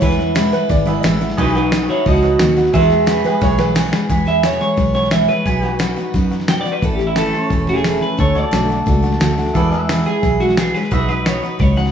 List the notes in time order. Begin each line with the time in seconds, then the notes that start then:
Already playing: B3 G#4 B4
0.01 E2 B2 E3 G#3 B3 E4 B4, kick, snare
0.11 snare
0.18 E3 G#3 B3 E4, snare
0.35 E2 B2 E3 G#3 B3 E4, snare, hi-hat pedal
0.52 E3 G#3 B3 E4 B4, snare
0.69 G#1 E3 G#3 B3 E4 D5, kick, snare
0.85 E3 G#3 B3 E4 G#4 B4 E5, snare
1.00 E2 B2 D#5
1.04 A1 E3 G#3 B3 E4 E5, snare, hi-hat pedal
1.21 E3 G#3 B3 E4, snare
1.30 snare
1.37 B1 B2 F#3 B3 D#4 F#4 G#4 B4, kick, snare
1.47 snare
1.55 B3 D#4 F#4 B4, snare
1.63 F#4
1.72 B2 F#3 B3 D#4 F#4, snare, hi-hat pedal
1.88 B3 D#4 E4 F#4 C#5, snare
2.06 C#2 F#3 B3 D#4 F#4 D#5, kick, snare
2.15 snare
2.22 B3 D#4 F#4 B4, snare
2.39 D#2 B2 F#3 B3 D#4 F#4, snare, hi-hat pedal
2.57 B3 D#4 F#4, snare
2.65 snare
2.72 E2 B2 E3 G#3 B3 E4 G#4 B4 E5, kick, snare
2.82 snare
2.90 E3 G#3 B3 G#4, snare
3.06 E2 B2 E3 G#3 B3 F#4 G#4 B4, snare, hi-hat pedal
3.24 E3 G#3 B3 G#4 B4, snare
3.32 G#4
3.41 B1 E3 G#3 B3 G#4 C#5, kick, snare
3.58 E3 G#3 B3 G#4 B4, snare
3.75 E2 B2 E3 G#3 B3 G#4, snare, hi-hat pedal
3.92 E3 G#3 B3 G#4, snare
4.09 E2 B2 E3 G#3 B3 G#4 B4, kick, snare
4.26 E3 G#3 B3 G#4 E5, snare
4.43 E2 B2 E3 G#3 B3 G#4 C#5, snare, hi-hat pedal
4.60 E3 G#3 B3 G#4 C#5, snare
4.77 B1 E3 G#3 B3 G#4, kick, snare
4.94 E3 G#3 B3 G#4 C#5, snare
5.03 snare
5.11 E2 B2 E3 G#3 B3 G#4 E5, snare, hi-hat pedal
5.28 E3 G#3 B3 G#4 B4, snare
5.46 B1 B2 F#3 B3 D#4 F#4 G#4 B4, kick, snare
5.62 B3 D#4 F#4, snare
5.71 F#4
5.79 B2 F#3 B3 D#4 F#4, snare, hi-hat pedal
5.96 B3 D#4 F#4, snare
6.14 F#2 F#3 B3 D#4 F#4, kick, snare
6.30 B3 D#4 F#4, snare
6.40 snare
6.48 B2 F#3 B3 D#4 F#4 G5, snare, hi-hat pedal
6.61 D5
6.65 B3 D#4 F#4, snare
6.72 B4
6.82 A1 A2 E3 A3 C#4 E4 A4, kick, snare
6.95 G4
6.99 A3 C#4 E4, snare
7.07 E4
7.16 A2 E3 A3 C#4 E4 A4 B4, snare, hi-hat pedal
7.33 A3 C#4 E4, snare
7.43 C#5
7.50 E1 E3 A3 C#4 E4, kick, snare
7.67 A3 C#4 E4 G#4, snare
7.76 snare
7.84 A2 E3 A3 C#4 E4, snare, hi-hat pedal
8.01 A3 C#4 E4 B4, snare
8.17 D2 D3 A3 D4 F#4 A4 C#5, kick, snare
8.35 A3 D4 F#4 D5, snare
8.41 D5
8.51 B1 D3 A3 D4 F#4, snare, hi-hat pedal
8.69 A3 D4 F#4, snare
8.86 C#2 D3 A3 D4 F#4, kick, snare
9.02 A3 D4 F#4, snare
9.12 snare
9.20 D2 D3 A3 D4 F#4, snare, hi-hat pedal
9.38 A3 D4 F#4, snare
9.46 snare
9.54 E2 B2 E3 G#3 B3 E4 G#4 A4 B4 D5, kick, snare
9.72 E3 G#3 B3 G#4, snare
9.80 B4 E5
9.89 E2 B2 E3 G#3 B3 G#4, snare, hi-hat pedal
10.06 E3 G#3 B3 G#4, snare
10.23 B1 E3 G#3 B3 G#4, kick, snare
10.40 E3 G#3 B3 F#4 G#4, snare
10.49 snare
10.57 E2 B2 E3 G#3 B3 G#4, snare, hi-hat pedal
10.74 E3 G#3 B3 G#4 B4, snare
10.83 snare
10.91 B1 B2 F#3 B3 D#4 F#4 G#4 B4 E5, kick, snare
11.09 B3 D#4 F#4 B4, snare
11.13 D#5
11.26 B2 F#3 B3 D#4 F#4 C#5, snare, hi-hat pedal
11.42 B3 D#4 F#4 B4, snare
11.59 C#2 F#3 B3 D#4 F#4 C#5, kick, snare
11.77 B3 D#4 F#4 F#5, snare
11.86 snare